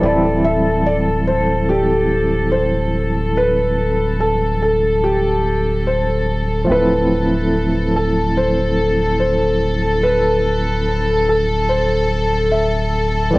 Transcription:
Already playing: A4
0.00 D1 E3 G3 C4 D5
0.05 E4
0.45 E5
0.86 D5
1.27 C5
1.69 G4
2.52 C5
3.37 B4
4.20 A4
4.62 A4
5.04 G4
5.87 C5
6.65 F3 A3
6.69 D1 C4 E4 A4 B4
7.96 A4
8.37 C5
9.20 C5
10.03 B4
11.29 A4
11.69 C5
12.52 E5
13.31 E3 G3
13.35 D1 C4 D5

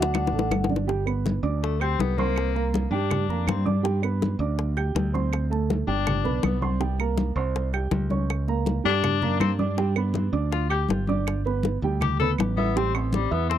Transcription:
Already playing: D2 F#3 D4 F#4 F#5
0.02 low bongo
0.14 low bongo, high conga, claves
0.27 low bongo
0.32 A1 A3 A4, high conga
0.39 low bongo
0.51 G1, low bongo, high conga, claves
0.64 low bongo
0.69 D4 D5, high conga
0.76 low bongo
0.87 G3 G4 G5, high bongo, high conga
1.06 B3 B4 B5, high bongo, high conga, claves
1.26 high bongo, high conga
1.43 D2 D4 D5 D6, high conga
1.63 A3, high bongo, high conga
1.80 C4 G4 G5 G6, high bongo, high conga, claves
1.99 C2 B3, high bongo, low bongo, high conga
2.18 A#3 C4 C5 C6, high bongo, high conga
2.36 high bongo, high conga, claves
2.55 A#3 A#4 A#5, high bongo, high conga
2.74 high bongo, high conga
2.91 G2 G3 D4 G4 G5, high conga
3.11 high bongo, high conga, low conga, claves
3.28 F2 A#3 A#4 A#5, high bongo, high conga
3.47 G2 C4, high bongo, low bongo, high conga, claves
3.65 D4 D5 D6, high conga
3.83 G3 G4 G5, high bongo, high conga
4.02 B3 B4 B5, high bongo, high conga, claves
4.22 high bongo, high conga
4.39 D2 D4 D5 D6, high conga
4.59 high bongo, high conga
4.76 G4 G5 G6, high bongo, high conga, claves
4.95 D2, high bongo, low bongo, high conga
5.13 C4 C5 C6, high bongo, high conga
5.33 high bongo, high conga, claves
5.50 A3 A4 A5, high bongo, high conga
5.70 high bongo, high conga
5.87 G1 G3 D4 G4 G5, high conga
6.07 high bongo, high conga, low conga, claves
6.24 B1 B3 B4 B5, high bongo, high conga, low conga
6.43 C2 B3, high bongo, low bongo, high conga, claves
6.61 C4 C5 C6, high conga
6.80 G3 G4 G5, high bongo, high conga
6.99 A#3 A#4 A#5, high bongo, high conga, claves
7.18 high bongo, high conga
7.36 C2 C4 C5 C6, high conga
7.56 high bongo, high conga
7.73 G4 G5 G6, high bongo, high conga, claves
7.91 C#2, high bongo, low bongo, high conga
8.10 C#4 C#5 C#6, high bongo, high conga
8.29 high bongo, high conga, claves
8.48 A#3 A#4 A#5, high bongo, high conga
8.66 high bongo, high conga
8.84 G2 G3 D4 G4 G5, high conga
9.03 high bongo, high conga, low conga, claves
9.22 F#2 A#3 A#4 A#5, high bongo, high conga, low conga
9.40 G2 C4, high bongo, low bongo, high conga, claves
9.59 D4 D5 D6, high conga
9.77 G3 G4 G5, high bongo, high conga
9.95 B3 B4 B5, high bongo, high conga, claves
10.14 high bongo, high conga
10.32 D2 D4 D5 D6, high conga
10.52 F4, high bongo, high conga
10.70 G4 G5 G6, high bongo, high conga, claves
10.89 G1, high bongo, low bongo, high conga
11.07 D4 D5 D6, high bongo, high conga
11.27 high bongo, high conga, claves
11.45 B3 B4 B5, high bongo, high conga
11.63 high bongo, high conga
11.82 D2 G3 G4 G5, high conga
12.01 G4, high bongo, high conga, low conga, claves
12.20 B3 A4 B4 B5, high bongo, high conga, low conga
12.38 A1, high bongo, low bongo, high conga, claves
12.57 B3 E4 E5 E6, high conga
12.76 G3 C4 G4 G5, high bongo, high conga
12.94 E3 C4 C5 C6, high bongo, high conga, claves
13.13 G3, high bongo, high conga
13.31 E2 B3 E4 E5 E6, high conga
13.49 C4, high bongo, high conga

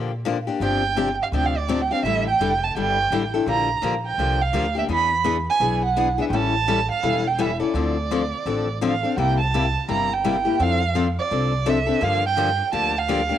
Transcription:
Already playing: A#2 D3 F3 A#3 D4 G4
0.25 D3 F3 A#3 D4 G4
0.47 A#3 D4 G4
0.60 G1 C3 F3 C4 D4 G4 G5
0.96 C3 F3 C4 D4 G4
1.23 F5
1.32 D2 C3 F3 C4 D4 G4 G5
1.46 F5
1.58 D5
1.68 C3 F3 C4 D4 G4
1.82 G5
1.91 C4 D4 G4 F5
2.03 A1 D3 G3 D4 E4 A4 E5
2.28 G5
2.40 F1 D3 G3 D4 E4 A4
2.64 A5
2.75 G1 D3 G3 D4 E4 A4 G5
3.10 A1 D3 G3 D4 E4 A4
3.34 D4 E4 A4
3.46 A#1 D3 F3 A#3 D4 G4 A#5
3.82 A#1 D3 F3 A#3 D4 G4
4.07 G5
4.18 C2 D3 F3 A#3 D4 G4
4.41 F5
4.53 D2 D3 F3 A#3 D4 G4
4.75 A#3 D4 G4 E5
4.88 E2 E3 B3 D4 G#4 B5
5.24 E3 B3 D4 G#4
5.50 G#5
5.60 B1 E3 B3 D4 G#4
5.86 F#5
5.96 E3 B3 D4 G#4
6.18 B3 D4 G#4 E5
6.29 A1 E3 G5
6.33 G3 C#4 E4 A4 A5
6.68 E3 G3 C#4 E4 A4
6.92 F5
7.03 E1 E3 G3 C#4 E4 A4
7.28 G5
7.38 E3 G3 C#4 E4 A4 E5
7.60 C#4 E4 A4 D5
7.74 D2 D3 F3 C4 D4 A4
8.11 D3 F3 C4 D4 A4
8.46 A1 D3 F3 C4 D4 A4
8.81 D3 F3 C4 D4 A4 F5
9.03 C4 D4 A4
9.17 C2 C3 G3 A#3 E4 G4 G5
9.40 A5
9.54 C3 G3 A#3 E4 G4
9.89 G1 C3 G3 A#3 E4 G4 A#5
10.13 G5
10.24 C3 G3 A#3 E4 G4
10.45 A#3 E4 G4
10.59 F2 F3 C4 D4 A4 F5
10.95 F3 C4 D4 A4
11.19 D5
11.31 C2 F3 C4 D4 A4
11.66 F3 C4 D4 A4 E5
11.87 C4 D4 A4
12.01 G2 D3 F3 A#3 D4 G4 F5
12.26 G5
12.37 D3 F3 A#3 D4 G4
12.72 D2 D3 F3 A#3 D4 G4 A5
12.99 F5
13.08 D3 F3 A#3 D4 G4
13.29 A#3 D4 G4

